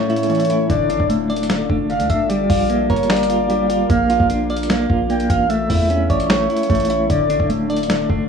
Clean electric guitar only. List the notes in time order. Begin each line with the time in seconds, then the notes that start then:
Already playing: A3 C#4 C#5
0.10 E4
0.30 A3
0.50 E4
0.70 D3
0.90 D4
1.10 A3
1.30 D5
1.50 D3
1.70 D4
1.90 D3
2.10 D4
2.30 G3
2.50 F4
2.70 A#3
2.90 A#4
3.10 G3
3.30 F4
3.50 G3
3.70 F4
3.90 A#3
4.10 F4
4.30 D4
4.50 D5
4.70 A#3
4.90 F4
5.10 A#3
5.30 F4
5.50 A3
5.70 E4
5.90 C#4
6.10 C#5
6.30 A3
6.50 E4
6.70 A3
6.90 E4
7.10 D3
7.30 D4
7.50 A3
7.70 D5
7.90 D3
8.10 D4